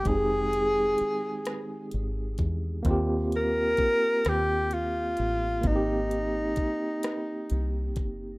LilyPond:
<<
  \new Staff \with { instrumentName = "Tenor saxophone" } { \time 6/8 \key f \minor \tempo 4. = 43 aes'2 r4 | r8 bes'4 g'8 f'4 | ees'2~ ees'8 r8 | }
  \new Staff \with { instrumentName = "Tine electric piano" } { \time 6/8 \key f \minor <aes c' ees' g' aes'>2. | <bes c' f' g'>2. | <bes c' ees' ges' g'>2. | }
  \new Staff \with { instrumentName = "Fingered electric bass" } { \clef bass \time 6/8 \key f \minor f,,4 r4 aes,,8 e,8 | ees,4 r8 ees,4 a,,8 | aes,,4 r4 c,8 ges,,8 | }
  \new DrumStaff \with { instrumentName = "Drums" } \drummode { \time 6/8 <hh bd>8 hh8 hh8 <hh ss>8 hh8 <hh bd>8 | <hh bd>8 hh8 <hh bd>8 <hh ss>8 hh8 hh8 | <hh bd>8 hh8 <hh bd>8 <hh ss>8 hh8 <hh bd>8 | }
>>